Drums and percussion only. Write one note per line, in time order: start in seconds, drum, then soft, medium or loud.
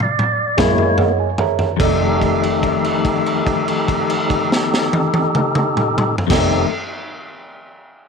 0.00 mid tom medium
0.19 mid tom medium
0.58 kick medium
0.58 snare medium
0.58 mid tom medium
0.78 floor tom medium
0.98 floor tom medium
1.38 floor tom medium
1.59 floor tom medium
1.80 kick medium
1.80 crash medium
2.21 kick medium
2.21 crash soft
2.43 crash soft
2.63 kick soft
2.63 crash soft
2.84 crash soft
3.05 kick medium
3.05 crash soft
3.26 crash soft
3.47 kick medium
3.47 crash soft
3.68 crash soft
3.88 kick medium
3.88 crash soft
4.10 crash soft
4.30 kick medium
4.30 crash soft
4.52 snare medium
4.74 snare medium
4.93 high tom medium
5.14 high tom medium
5.35 mid tom medium
5.55 mid tom loud
5.77 mid tom medium
5.98 mid tom loud
6.18 floor tom loud
6.30 kick loud
6.30 snare medium
6.30 crash loud